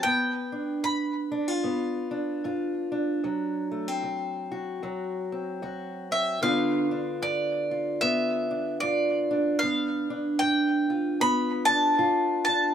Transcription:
0.03 G2 B3 G5
0.52 D4
0.83 G2 B5
1.32 D4
1.48 F4
1.64 G2 B3
2.11 D4
2.44 G2 F4
2.92 D4
3.24 D2 F#3
3.71 A3
3.88 C4
4.03 D2
4.52 F#4
4.83 D2 F#3
5.32 C4
5.62 D2 F#4
6.11 C4 E5
6.41 G2 D3 B3 D4 F4 F5
6.91 D4
7.22 G2 D5
7.71 F4
8.01 G2 B3 E5
8.51 D4
8.80 G2 F4 D5
9.31 D4
9.59 G2 B3 F5
10.10 D4
10.39 G2 G5
10.90 F4
11.20 G2 B3 B5
11.65 D4 A5
11.98 G2 F4
12.45 D4 A5

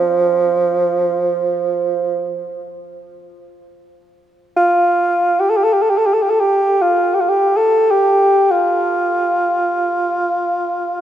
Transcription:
Already playing: F3
4.56 F4
5.40 G4
5.50 A4
5.57 G4
5.64 A4
5.73 G4
5.82 A4
5.90 G4
5.98 A4
6.06 G4
6.14 A4
6.22 G4
6.30 A4
6.40 G4
6.82 F4
7.15 G4
7.21 F4
7.29 G4
7.57 A4
7.91 G4
8.51 F4

